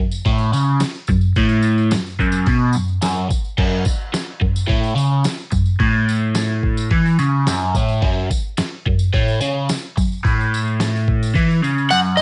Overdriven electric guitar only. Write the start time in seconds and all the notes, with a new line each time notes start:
0.00 F#2
0.26 A2
0.53 C#3
0.82 muted overdriven electric guitar stroke
1.09 F#2
1.37 A2
1.93 F#2
2.19 F#2
2.47 B2
2.75 F#2
3.03 F#2
3.30 muted overdriven electric guitar stroke
3.59 F#2
3.86 muted overdriven electric guitar stroke
4.14 muted overdriven electric guitar stroke
4.41 F#2
4.68 A2
4.96 C#3
5.25 muted overdriven electric guitar stroke
5.52 F#2
5.80 A2
6.91 E3
7.19 C#3
7.47 F#2
7.75 A2
8.02 F#2
8.31 muted overdriven electric guitar stroke
8.59 muted overdriven electric guitar stroke
8.87 F#2
9.14 A2
9.42 C#3
9.70 muted overdriven electric guitar stroke
9.97 F#2
10.24 A2
11.35 E3
11.63 C#3
11.91 F#2
12.18 A2